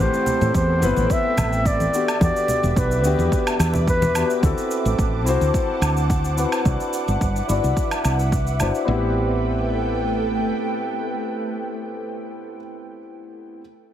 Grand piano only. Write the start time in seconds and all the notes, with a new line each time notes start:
Already playing: A3 C4
0.00 E4 G4
0.80 B3 C4 E4
0.84 B4
1.93 B3 D4 F#4 G4
2.19 B3 D4 F#4
2.23 G4
3.02 B3 D4 F#4
3.06 G4
4.15 B3 D4 F#4 G4
4.41 C4 E4 F#4
4.45 A4
5.24 C4 E4 F#4
5.29 C5
6.37 C4 E4 F#4 B4
6.64 D4 E4 F#4
6.68 B4
7.47 D4 E4 F#4
7.51 D5
8.59 D4 E4 F#4 C5
8.85 B3 C4
8.89 E4 G4